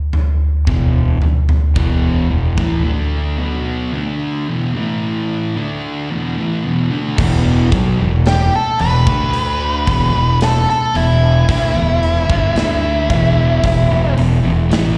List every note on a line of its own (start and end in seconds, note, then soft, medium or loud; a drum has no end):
0.13 floor tom medium
0.67 1.18 E1 medium
0.67 1.11 E2 medium
0.67 1.11 B2 medium
0.67 kick medium
0.67 floor tom medium
1.22 muted distorted electric guitar stroke medium
1.22 muted fingered electric bass stroke soft
1.22 floor tom medium
1.49 floor tom medium
1.75 2.27 E1 loud
1.75 2.28 E2 medium
1.75 2.29 B2 loud
1.75 2.29 E3 loud
1.75 kick loud
2.29 2.56 E1 medium
2.29 2.57 E2 medium
2.29 2.57 B2 medium
2.58 2.83 A1 medium
2.58 2.83 A2 medium
2.58 2.83 E3 loud
2.58 kick loud
2.58 floor tom medium
2.84 3.37 D3 loud
2.84 3.37 A3 loud
2.84 3.38 D4 loud
3.39 3.91 B2 medium
3.39 3.92 F#3 medium
3.39 3.92 B3 medium
3.94 4.46 D3 loud
3.94 4.46 A3 loud
3.94 4.47 D4 loud
4.48 4.73 E2 medium
4.48 4.74 B2 medium
4.74 5.54 A2 medium
4.74 5.54 E3 medium
4.74 5.55 A3 medium
5.56 6.08 D3 loud
5.56 6.08 A3 medium
5.56 6.09 D4 loud
6.10 6.35 E2 medium
6.10 6.36 B2 loud
6.38 6.63 A2 medium
6.38 6.63 E3 medium
6.64 6.89 E2 medium
6.64 6.90 B2 loud
6.91 7.16 D3 loud
6.91 7.17 A3 loud
7.18 7.68 E1 loud
7.18 7.71 E2 loud
7.18 7.71 B2 loud
7.18 7.71 E3 loud
7.18 kick loud
7.18 crash loud
7.72 7.97 B1 loud
7.72 7.97 B2 medium
7.72 7.98 F#3 medium
7.72 kick loud
7.72 open hi-hat medium
7.99 8.49 E1 medium
7.99 8.42 E2 medium
7.99 8.42 B2 medium
8.26 8.53 G4 medium
8.26 snare loud
8.26 open hi-hat medium
8.56 8.80 A4 loud
8.79 9.05 E1 medium
8.79 9.07 E2 medium
8.79 9.06 B2 medium
8.79 10.38 B4 medium
8.79 open hi-hat medium
9.06 9.83 D2 loud
9.06 9.86 D3 medium
9.06 9.86 A3 medium
9.06 9.86 D4 medium
9.06 kick loud
9.33 open hi-hat medium
9.87 10.12 E1 loud
9.87 10.12 E2 loud
9.87 10.13 B2 loud
9.87 kick loud
9.87 open hi-hat medium
10.13 10.65 E1 medium
10.13 10.57 E2 medium
10.13 10.57 B2 medium
10.41 10.69 A4 loud
10.41 snare loud
10.41 open hi-hat loud
10.69 10.95 A4 medium
10.69 snare soft
10.94 11.45 E1 medium
10.94 11.37 E2 medium
10.94 11.38 B2 medium
10.94 14.14 E4 loud
10.94 open hi-hat medium
11.48 11.74 D2 loud
11.48 11.74 D3 loud
11.48 11.74 A3 loud
11.48 kick loud
11.48 open hi-hat loud
11.75 12.25 E1 medium
11.75 12.19 E2 medium
11.75 12.19 B2 medium
12.03 open hi-hat medium
12.29 12.54 G1 loud
12.29 12.54 G2 loud
12.29 12.54 D3 loud
12.29 kick loud
12.56 13.06 D2 medium
12.56 13.08 D3 medium
12.56 13.08 A3 loud
12.56 13.08 D4 loud
12.56 snare loud
12.56 open hi-hat medium
13.09 13.60 E1 loud
13.09 13.62 E2 medium
13.09 13.62 B2 medium
13.09 13.62 E3 loud
13.09 kick loud
13.09 open hi-hat medium
13.63 13.89 E1 medium
13.63 13.90 E2 medium
13.63 13.90 B2 medium
13.63 kick medium
13.63 open hi-hat medium
13.90 14.15 E1 medium
13.90 14.16 E2 medium
13.90 14.16 B2 medium
14.17 14.43 E1 medium
14.17 14.43 E2 medium
14.17 14.43 B2 medium
14.17 open hi-hat medium
14.44 14.69 E1 medium
14.44 14.71 E2 medium
14.44 14.70 B2 medium
14.71 14.96 A1 loud
14.71 14.96 A2 loud
14.71 14.96 E3 loud
14.71 snare loud
14.71 open hi-hat medium